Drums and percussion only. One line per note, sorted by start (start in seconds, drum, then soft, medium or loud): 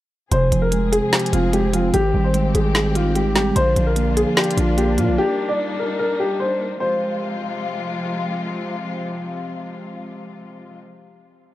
0.32 closed hi-hat medium
0.52 closed hi-hat medium
0.72 closed hi-hat medium
0.93 closed hi-hat medium
1.13 snare loud
1.13 closed hi-hat soft
1.19 closed hi-hat medium
1.26 closed hi-hat medium
1.33 closed hi-hat medium
1.53 closed hi-hat medium
1.74 closed hi-hat medium
1.94 closed hi-hat medium
2.34 closed hi-hat medium
2.55 closed hi-hat medium
2.75 snare loud
2.75 closed hi-hat medium
2.95 closed hi-hat medium
3.15 closed hi-hat medium
3.36 snare loud
3.36 closed hi-hat medium
3.56 closed hi-hat medium
3.76 closed hi-hat medium
3.96 closed hi-hat medium
4.17 closed hi-hat medium
4.37 snare loud
4.37 closed hi-hat soft
4.44 closed hi-hat medium
4.51 closed hi-hat medium
4.58 closed hi-hat medium
4.78 closed hi-hat medium
4.98 closed hi-hat medium